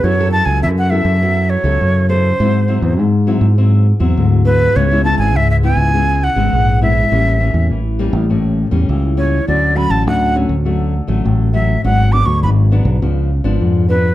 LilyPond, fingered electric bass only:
\new Staff \with { instrumentName = "Fingered electric bass" } { \clef bass \time 4/4 \key fis \minor \tempo 4 = 102 fis,8. cis,16 fis,8. fis,4 cis,16 fis,4 | gis,8. e,16 gis,8. gis,4 e,16 d,4 | cis,8. gis,,16 cis,8. cis,4 gis,,16 ais,,4 | a,,8. e,16 a,,8. a,,4 e,16 cis,4 |
d,8. a,,16 d,8. d,4 a,,16 a,,4 | gis,,8. d,16 gis,,8. b,,16 cis,8. gis,,16 eis,4 | }